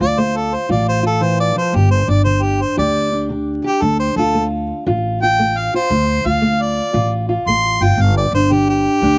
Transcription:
0.00 0.54 D2 medium
0.00 0.14 D3 medium
0.00 0.68 F4 medium
0.00 0.21 D5 loud
0.18 0.66 A3 medium
0.18 0.38 C5 medium
0.37 0.56 A4 medium
0.54 0.70 C5 medium
0.69 1.51 A1 medium
0.69 1.18 A2 medium
0.69 1.02 F4 medium
0.69 0.88 D5 medium
0.89 1.05 C5 medium
1.03 1.71 F4 medium
1.07 1.24 A4 medium
1.21 1.55 E3 medium
1.21 1.39 C5 medium
1.40 1.56 D5 medium
1.56 1.74 F3 medium
1.56 1.77 C5 medium
1.72 2.01 G1 loud
1.72 2.22 G2 medium
1.72 1.90 G4 medium
1.91 2.11 C5 medium
2.08 2.62 G1 medium
2.08 3.12 D4 medium
2.08 2.24 D5 medium
2.25 2.74 D3 medium
2.25 2.44 C5 medium
2.43 2.63 G4 medium
2.62 2.78 C5 medium
2.77 3.58 D2 medium
2.77 3.26 G2 medium
2.77 3.63 G4 medium
2.77 3.29 D5 loud
3.12 6.62 D4 medium
3.29 3.78 D3 medium
3.64 3.80 G4 medium
3.64 3.84 G4 loud
3.82 4.09 D2 medium
3.82 4.31 D3 medium
3.82 3.99 A4 medium
3.99 4.16 C5 medium
4.16 4.70 D2 medium
4.16 4.87 F4 medium
4.16 4.44 A4 medium
4.35 4.83 A3 medium
4.87 5.67 A1 medium
4.87 5.35 A2 medium
4.87 5.21 F4 medium
5.23 5.73 F4 medium
5.23 5.59 G5 loud
5.39 5.87 A3 medium
5.58 5.73 F5 medium
5.74 5.89 F4 medium
5.74 6.28 C5 medium
5.90 6.17 D2 loud
5.90 6.39 D3 medium
6.25 6.79 D2 medium
6.25 6.92 F4 medium
6.25 6.63 F5 medium
6.42 6.90 A3 medium
6.62 7.11 D5 medium
6.93 7.34 A1 medium
6.93 7.42 A2 medium
6.93 7.28 F4 medium
7.29 7.81 F4 medium
7.46 7.77 A1 medium
7.46 7.96 A3 medium
7.46 7.85 C6 loud
7.81 7.96 G1 medium
7.81 7.97 F4 medium
7.81 8.03 G5 medium
7.97 8.24 G1 medium
7.97 8.47 G2 medium
8.02 8.17 F5 medium
8.17 8.33 D5 medium
8.32 8.86 G1 medium
8.32 9.03 D4 medium
8.32 8.54 C5 loud
8.51 8.99 D3 medium
8.51 8.68 G4 medium
8.69 9.19 G4 loud
9.02 9.19 D2 loud
9.02 9.19 G2 medium
9.02 9.19 D4 medium

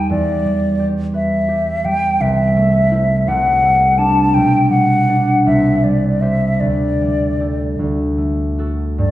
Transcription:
0.00 0.14 D#2 soft
0.00 0.44 G3 soft
0.00 0.13 D#4 soft
0.00 0.78 G4 soft
0.00 0.10 G5 medium
0.10 2.24 E2 soft
0.10 0.87 D5 medium
0.45 1.84 G3 soft
0.79 1.47 G4 soft
1.14 2.24 B4 soft
1.14 1.86 E5 medium
1.48 2.24 G4 soft
1.85 2.24 G3 soft
1.85 2.23 G5 medium
2.20 3.27 C2 soft
2.20 3.30 E5 medium
2.56 3.61 A3 soft
2.91 3.30 E4 soft
2.91 4.37 C5 soft
3.28 4.37 C2 soft
3.28 4.00 F#5 medium
3.62 4.37 A3 soft
3.98 5.07 D4 soft
3.98 5.08 D5 soft
3.98 4.36 A5 medium
4.34 5.49 B1 soft
4.34 4.70 G5 medium
4.70 5.83 G3 soft
4.70 5.45 F#5 medium
5.08 5.49 D4 soft
5.08 5.50 D5 soft
5.46 6.64 C2 soft
5.46 5.85 E5 medium
5.84 6.99 G3 soft
5.84 6.23 D5 soft
6.21 7.39 G4 soft
6.21 6.64 C5 soft
6.21 6.62 E5 medium
6.60 7.78 D2 soft
6.60 7.78 D5 medium
7.01 7.82 G3 soft
7.40 7.82 G4 soft
7.40 8.58 A4 soft
7.79 9.01 D2 soft
8.18 9.01 A3 soft
8.58 9.01 F#4 soft
8.58 9.01 A4 soft
8.98 9.11 G2 soft
8.98 9.11 D5 medium

